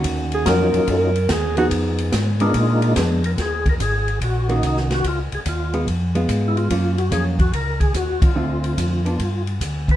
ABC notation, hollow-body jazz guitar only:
X:1
M:4/4
L:1/8
Q:"Swing" 1/4=144
K:Db
V:1 name="Hollow-body jazz guitar"
[E,B,DG]2 z4 z [F,_CEA]- | [F,_CEA]2 z [A,C=D] z2 [A,CD] z | z4 z [E,B,DG]3 | z3 [A,_CF] z [A,CF]3 |
[G,B,DF] z [G,B,DF] z4 z | [=D,=A,CF]3 [F,_C=D] z4 |]